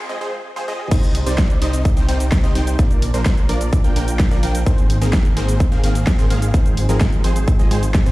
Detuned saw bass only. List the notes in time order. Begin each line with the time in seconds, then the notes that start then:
0.91 C2
1.27 C2
1.62 C2
1.97 C2
2.09 C2
2.44 C2
2.55 C2
2.79 A#1
3.14 A#1
3.49 A#1
3.84 A#1
3.96 A#1
4.31 A#1
4.43 A#1
4.66 G#1
5.01 G#1
5.37 G#1
5.72 G#1
5.84 G#1
6.19 G#1
6.30 G#1
6.54 G#1
6.89 G#1
7.24 G#1
7.59 G#1
7.71 G#1
8.06 G#2